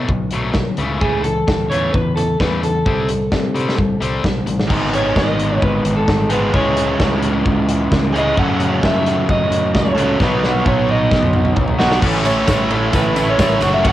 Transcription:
0.08 fingered electric bass B1, overdriven electric guitar B2 F#3, kick
0.31 overdriven electric guitar B2 F#3 A3, closed hi-hat
0.54 fingered electric bass B1, overdriven electric guitar B2 F#3, kick, snare
0.77 fingered electric bass C#2, overdriven electric guitar C#3 E3 A3, closed hi-hat
1.00 overdriven electric guitar C#3 E3 A3, clean electric guitar G#4, kick
1.23 overdriven electric guitar C#3 E3, clean electric guitar A4, closed hi-hat
1.47 fingered electric bass C#2, overdriven electric guitar C#3 E3, kick, snare
1.70 fingered electric bass E2, overdriven electric guitar C#3 E3 A3, clean electric guitar C#5, closed hi-hat
1.92 fingered electric bass E2, overdriven electric guitar C#3 E3, clean electric guitar B4, kick
2.16 overdriven electric guitar C#3 E3, clean electric guitar A4, closed hi-hat
2.40 fingered electric bass E2, overdriven electric guitar C#3 E3 A3, clean electric guitar B4, kick, snare
2.63 overdriven electric guitar C#3 E3, clean electric guitar A4, closed hi-hat
2.86 fingered electric bass C2, overdriven electric guitar C3 G3 C4, kick
3.09 overdriven electric guitar C3 G3, closed hi-hat
3.32 fingered electric bass C3, overdriven electric guitar C3 G3, kick, snare
3.54 overdriven electric guitar C3 G3 C4, closed hi-hat
3.69 snare
3.77 fingered electric bass C2, overdriven electric guitar C3 G3, kick
4.00 fingered electric bass C2, overdriven electric guitar C3 G3 C4, closed hi-hat
4.24 fingered electric bass B1, overdriven electric guitar C3 G3, kick, snare
4.46 fingered electric bass A1, overdriven electric guitar C3 G3, closed hi-hat
4.60 snare
4.68 fingered electric bass G#1, overdriven electric guitar G#2 D#3 G#3 B3 D#4 G#4, kick, crash
4.94 clean electric guitar C#5, closed hi-hat
5.16 fingered electric bass G#1, clean electric guitar D#5, kick, snare
5.40 closed hi-hat
5.62 fingered electric bass G#1, clean electric guitar B4, kick
5.84 fingered electric bass G#1, closed hi-hat
5.97 clean electric guitar A4
6.08 fingered electric bass G#1, kick, snare
6.29 overdriven electric guitar G#2 D#3 G#3 B3 D#4 G#4, clean electric guitar B4, closed hi-hat
6.53 fingered electric bass C#2, overdriven electric guitar C#3 E3 G#3 C#4 E4 G#4, clean electric guitar C#5, kick
6.77 closed hi-hat
7.00 fingered electric bass C#2, kick, snare
7.22 closed hi-hat
7.46 fingered electric bass C#2, kick
7.68 closed hi-hat
7.91 fingered electric bass C#2, kick, snare
8.12 overdriven electric guitar E3 G#3 C#4 E4 G#4, closed hi-hat
8.17 overdriven electric guitar C#3, clean electric guitar D#5
8.37 overdriven electric guitar F#2 C#3 F#3 A3 C#4 A4, fingered electric bass F#2, clean electric guitar F#5, kick
8.60 closed hi-hat
8.83 fingered electric bass F#2, clean electric guitar E5, kick, snare
9.06 snare, closed hi-hat
9.29 fingered electric bass F#2, clean electric guitar D#5, kick
9.50 fingered electric bass F#2, closed hi-hat
9.75 fingered electric bass C#2, clean electric guitar C#5, kick, snare
9.95 overdriven electric guitar A3 C#4 A4, closed hi-hat
9.99 overdriven electric guitar F#2 C#3 F#3
10.19 fingered electric bass B1, overdriven electric guitar B2 F#3 B3 D#4, clean electric guitar B4, kick, snare
10.23 overdriven electric guitar F#4
10.44 snare
10.66 fingered electric bass B1, clean electric guitar C#5, kick, mid tom
10.89 clean electric guitar D#5, mid tom
11.11 fingered electric bass B1, kick, snare
11.23 mid tom
11.33 mid tom
11.45 mid tom
11.56 fingered electric bass B1, kick, floor tom
11.68 floor tom
11.79 overdriven electric guitar B2 F#3 B3 D#4 F#4, snare
11.92 snare
12.01 fingered electric bass A1, overdriven electric guitar A2 E3 A3 C#4 E4 A4, kick, crash
12.23 overdriven electric guitar A2 E3 A3 C#4 E4 A4, clean electric guitar C#5, ride, tambourine
12.46 fingered electric bass A1, overdriven electric guitar A2 E3 A3 C#4 E4 A4, kick, snare, ride, tambourine
12.69 overdriven electric guitar A2 E3 A3 C#4 E4 A4, ride, tambourine
12.92 fingered electric bass A1, overdriven electric guitar A2 E3 A3 C#4 E4 A4, clean electric guitar B4, kick, ride, tambourine
13.15 overdriven electric guitar A2 E3 A3 C#4 E4 A4, ride, tambourine
13.29 clean electric guitar C#5
13.37 fingered electric bass A1, overdriven electric guitar A2 E3 A3 C#4 E4 A4, kick, snare, ride, tambourine
13.61 fingered electric bass F#1, overdriven electric guitar F#2 C#3 F#3 A3 C#4 F#4 A4, ride, tambourine
13.74 clean electric guitar E5
13.83 overdriven electric guitar F#2 C#3 F#3 A3 C#4 F#4 A4, clean electric guitar F#5, kick, ride

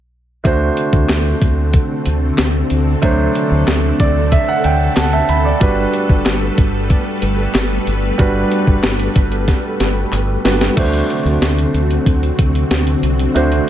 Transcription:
0.44 fingered electric bass D2, string machine D3 C4 A4, grand piano A3 D4 F#4 C5, kick, closed hi-hat
0.77 closed hi-hat
0.93 fingered electric bass D2, kick
1.09 fingered electric bass D2, snare, clap, closed hi-hat
1.41 fingered electric bass D2, kick, closed hi-hat
1.73 kick, closed hi-hat
2.06 fingered electric bass D2, closed hi-hat
2.38 fingered electric bass D2, snare, clap, closed hi-hat
2.70 fingered electric bass D2, closed hi-hat
3.02 fingered electric bass D2, grand piano F#3 A3 D4 C5, kick, closed hi-hat
3.35 closed hi-hat
3.51 fingered electric bass D2
3.67 fingered electric bass D2, snare, clap, closed hi-hat
4.00 fingered electric bass D2, grand piano D5, kick, closed hi-hat
4.32 grand piano E5, kick, closed hi-hat
4.49 grand piano F#5
4.64 fingered electric bass D2, grand piano G5, closed hi-hat
4.96 fingered electric bass D2, grand piano F#5 A5, snare, clap, closed hi-hat
5.13 grand piano E5 A5
5.29 fingered electric bass D2, grand piano B5, closed hi-hat
5.45 grand piano D5
5.60 fingered electric bass G1, grand piano G3 D4 F#4 B4, string machine G3 B4, kick, closed hi-hat
5.93 closed hi-hat
6.09 fingered electric bass G1, kick
6.26 fingered electric bass G1, snare, clap, closed hi-hat
6.58 fingered electric bass G1, kick, closed hi-hat
6.90 kick, closed hi-hat
7.22 fingered electric bass G1, closed hi-hat
7.54 fingered electric bass G1, snare, clap, closed hi-hat
7.87 fingered electric bass G1, closed hi-hat
8.18 fingered electric bass G1, grand piano G3 D4 F#4 B4, kick, closed hi-hat
8.52 closed hi-hat
8.67 fingered electric bass G1, kick
8.83 fingered electric bass G1, snare, clap, closed hi-hat
8.99 closed hi-hat
9.16 fingered electric bass G1, kick, closed hi-hat
9.32 closed hi-hat
9.48 kick, snare, closed hi-hat
9.80 fingered electric bass G1, snare, closed hi-hat
10.12 fingered electric bass G1, clap, closed hi-hat
10.45 fingered electric bass G1, grand piano G3 D4 F#4 B4, snare, open hi-hat
10.61 snare
10.76 fingered electric bass D2, string machine D3 C4 F#4, grand piano A3 D4 F#4 C5, kick, closed hi-hat, crash
10.93 closed hi-hat
11.10 closed hi-hat
11.25 fingered electric bass D2, closed hi-hat
11.41 fingered electric bass D2, snare, closed hi-hat
11.59 closed hi-hat
11.74 fingered electric bass D2, closed hi-hat
11.91 closed hi-hat
12.06 fingered electric bass D2, kick, closed hi-hat
12.23 closed hi-hat
12.39 fingered electric bass D2, kick, closed hi-hat
12.55 closed hi-hat
12.71 fingered electric bass D2, snare, closed hi-hat
12.87 closed hi-hat
13.03 fingered electric bass C2, closed hi-hat
13.19 closed hi-hat
13.34 fingered electric bass D2, grand piano A3 D4 F#4 C5, closed hi-hat
13.52 closed hi-hat

